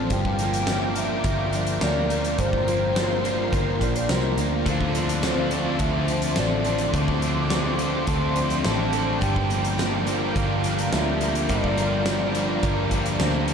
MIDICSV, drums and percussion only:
0, 0, Header, 1, 2, 480
1, 0, Start_track
1, 0, Tempo, 569260
1, 92, Time_signature, 4, 2, 24, 8
1, 11414, End_track
2, 0, Start_track
2, 0, Title_t, "Drums"
2, 86, Note_on_c, 9, 42, 62
2, 90, Note_on_c, 9, 36, 105
2, 170, Note_off_c, 9, 42, 0
2, 174, Note_off_c, 9, 36, 0
2, 211, Note_on_c, 9, 36, 78
2, 295, Note_off_c, 9, 36, 0
2, 326, Note_on_c, 9, 42, 66
2, 411, Note_off_c, 9, 42, 0
2, 452, Note_on_c, 9, 42, 71
2, 536, Note_off_c, 9, 42, 0
2, 565, Note_on_c, 9, 38, 102
2, 565, Note_on_c, 9, 42, 63
2, 649, Note_off_c, 9, 38, 0
2, 649, Note_off_c, 9, 42, 0
2, 806, Note_on_c, 9, 42, 60
2, 890, Note_off_c, 9, 42, 0
2, 1046, Note_on_c, 9, 42, 68
2, 1050, Note_on_c, 9, 36, 107
2, 1130, Note_off_c, 9, 42, 0
2, 1134, Note_off_c, 9, 36, 0
2, 1287, Note_on_c, 9, 42, 66
2, 1372, Note_off_c, 9, 42, 0
2, 1406, Note_on_c, 9, 42, 60
2, 1490, Note_off_c, 9, 42, 0
2, 1528, Note_on_c, 9, 38, 99
2, 1528, Note_on_c, 9, 42, 63
2, 1613, Note_off_c, 9, 38, 0
2, 1613, Note_off_c, 9, 42, 0
2, 1773, Note_on_c, 9, 42, 66
2, 1857, Note_off_c, 9, 42, 0
2, 1894, Note_on_c, 9, 42, 54
2, 1978, Note_off_c, 9, 42, 0
2, 2011, Note_on_c, 9, 42, 68
2, 2013, Note_on_c, 9, 36, 105
2, 2095, Note_off_c, 9, 42, 0
2, 2097, Note_off_c, 9, 36, 0
2, 2134, Note_on_c, 9, 36, 90
2, 2218, Note_off_c, 9, 36, 0
2, 2258, Note_on_c, 9, 42, 60
2, 2343, Note_off_c, 9, 42, 0
2, 2498, Note_on_c, 9, 38, 101
2, 2498, Note_on_c, 9, 42, 57
2, 2582, Note_off_c, 9, 38, 0
2, 2582, Note_off_c, 9, 42, 0
2, 2740, Note_on_c, 9, 42, 61
2, 2824, Note_off_c, 9, 42, 0
2, 2974, Note_on_c, 9, 36, 106
2, 2978, Note_on_c, 9, 42, 62
2, 3058, Note_off_c, 9, 36, 0
2, 3063, Note_off_c, 9, 42, 0
2, 3214, Note_on_c, 9, 36, 70
2, 3216, Note_on_c, 9, 42, 57
2, 3298, Note_off_c, 9, 36, 0
2, 3300, Note_off_c, 9, 42, 0
2, 3336, Note_on_c, 9, 42, 62
2, 3420, Note_off_c, 9, 42, 0
2, 3451, Note_on_c, 9, 38, 109
2, 3451, Note_on_c, 9, 42, 58
2, 3536, Note_off_c, 9, 38, 0
2, 3536, Note_off_c, 9, 42, 0
2, 3690, Note_on_c, 9, 42, 60
2, 3775, Note_off_c, 9, 42, 0
2, 3930, Note_on_c, 9, 42, 61
2, 3931, Note_on_c, 9, 36, 99
2, 4014, Note_off_c, 9, 42, 0
2, 4016, Note_off_c, 9, 36, 0
2, 4052, Note_on_c, 9, 36, 80
2, 4136, Note_off_c, 9, 36, 0
2, 4172, Note_on_c, 9, 42, 61
2, 4256, Note_off_c, 9, 42, 0
2, 4294, Note_on_c, 9, 42, 65
2, 4378, Note_off_c, 9, 42, 0
2, 4410, Note_on_c, 9, 38, 104
2, 4410, Note_on_c, 9, 42, 66
2, 4495, Note_off_c, 9, 38, 0
2, 4495, Note_off_c, 9, 42, 0
2, 4646, Note_on_c, 9, 42, 66
2, 4730, Note_off_c, 9, 42, 0
2, 4884, Note_on_c, 9, 42, 66
2, 4890, Note_on_c, 9, 36, 99
2, 4968, Note_off_c, 9, 42, 0
2, 4974, Note_off_c, 9, 36, 0
2, 5128, Note_on_c, 9, 42, 62
2, 5212, Note_off_c, 9, 42, 0
2, 5244, Note_on_c, 9, 42, 69
2, 5328, Note_off_c, 9, 42, 0
2, 5362, Note_on_c, 9, 38, 103
2, 5362, Note_on_c, 9, 42, 67
2, 5446, Note_off_c, 9, 38, 0
2, 5446, Note_off_c, 9, 42, 0
2, 5604, Note_on_c, 9, 42, 61
2, 5688, Note_off_c, 9, 42, 0
2, 5720, Note_on_c, 9, 42, 56
2, 5805, Note_off_c, 9, 42, 0
2, 5848, Note_on_c, 9, 42, 68
2, 5849, Note_on_c, 9, 36, 107
2, 5932, Note_off_c, 9, 42, 0
2, 5933, Note_off_c, 9, 36, 0
2, 5971, Note_on_c, 9, 36, 84
2, 6055, Note_off_c, 9, 36, 0
2, 6089, Note_on_c, 9, 42, 62
2, 6173, Note_off_c, 9, 42, 0
2, 6327, Note_on_c, 9, 38, 108
2, 6327, Note_on_c, 9, 42, 59
2, 6412, Note_off_c, 9, 38, 0
2, 6412, Note_off_c, 9, 42, 0
2, 6567, Note_on_c, 9, 42, 59
2, 6652, Note_off_c, 9, 42, 0
2, 6806, Note_on_c, 9, 42, 63
2, 6810, Note_on_c, 9, 36, 109
2, 6890, Note_off_c, 9, 42, 0
2, 6894, Note_off_c, 9, 36, 0
2, 7047, Note_on_c, 9, 42, 65
2, 7131, Note_off_c, 9, 42, 0
2, 7169, Note_on_c, 9, 38, 27
2, 7169, Note_on_c, 9, 42, 57
2, 7254, Note_off_c, 9, 38, 0
2, 7254, Note_off_c, 9, 42, 0
2, 7290, Note_on_c, 9, 38, 96
2, 7290, Note_on_c, 9, 42, 57
2, 7374, Note_off_c, 9, 38, 0
2, 7374, Note_off_c, 9, 42, 0
2, 7528, Note_on_c, 9, 42, 57
2, 7613, Note_off_c, 9, 42, 0
2, 7774, Note_on_c, 9, 36, 103
2, 7775, Note_on_c, 9, 42, 62
2, 7858, Note_off_c, 9, 36, 0
2, 7859, Note_off_c, 9, 42, 0
2, 7894, Note_on_c, 9, 36, 85
2, 7979, Note_off_c, 9, 36, 0
2, 8015, Note_on_c, 9, 42, 62
2, 8100, Note_off_c, 9, 42, 0
2, 8133, Note_on_c, 9, 42, 67
2, 8218, Note_off_c, 9, 42, 0
2, 8257, Note_on_c, 9, 38, 99
2, 8257, Note_on_c, 9, 42, 62
2, 8342, Note_off_c, 9, 38, 0
2, 8342, Note_off_c, 9, 42, 0
2, 8490, Note_on_c, 9, 42, 61
2, 8575, Note_off_c, 9, 42, 0
2, 8734, Note_on_c, 9, 36, 96
2, 8735, Note_on_c, 9, 42, 64
2, 8819, Note_off_c, 9, 36, 0
2, 8820, Note_off_c, 9, 42, 0
2, 8971, Note_on_c, 9, 42, 63
2, 9056, Note_off_c, 9, 42, 0
2, 9095, Note_on_c, 9, 38, 29
2, 9095, Note_on_c, 9, 42, 64
2, 9180, Note_off_c, 9, 38, 0
2, 9180, Note_off_c, 9, 42, 0
2, 9212, Note_on_c, 9, 38, 100
2, 9212, Note_on_c, 9, 42, 61
2, 9297, Note_off_c, 9, 38, 0
2, 9297, Note_off_c, 9, 42, 0
2, 9451, Note_on_c, 9, 42, 67
2, 9535, Note_off_c, 9, 42, 0
2, 9573, Note_on_c, 9, 42, 57
2, 9657, Note_off_c, 9, 42, 0
2, 9689, Note_on_c, 9, 42, 65
2, 9693, Note_on_c, 9, 36, 101
2, 9773, Note_off_c, 9, 42, 0
2, 9777, Note_off_c, 9, 36, 0
2, 9814, Note_on_c, 9, 36, 78
2, 9898, Note_off_c, 9, 36, 0
2, 9929, Note_on_c, 9, 42, 71
2, 10014, Note_off_c, 9, 42, 0
2, 10167, Note_on_c, 9, 38, 97
2, 10167, Note_on_c, 9, 42, 63
2, 10251, Note_off_c, 9, 38, 0
2, 10251, Note_off_c, 9, 42, 0
2, 10411, Note_on_c, 9, 42, 58
2, 10495, Note_off_c, 9, 42, 0
2, 10649, Note_on_c, 9, 42, 61
2, 10652, Note_on_c, 9, 36, 104
2, 10733, Note_off_c, 9, 42, 0
2, 10736, Note_off_c, 9, 36, 0
2, 10886, Note_on_c, 9, 42, 64
2, 10889, Note_on_c, 9, 36, 65
2, 10971, Note_off_c, 9, 42, 0
2, 10973, Note_off_c, 9, 36, 0
2, 11010, Note_on_c, 9, 42, 60
2, 11094, Note_off_c, 9, 42, 0
2, 11128, Note_on_c, 9, 38, 100
2, 11128, Note_on_c, 9, 42, 59
2, 11212, Note_off_c, 9, 38, 0
2, 11212, Note_off_c, 9, 42, 0
2, 11365, Note_on_c, 9, 42, 58
2, 11414, Note_off_c, 9, 42, 0
2, 11414, End_track
0, 0, End_of_file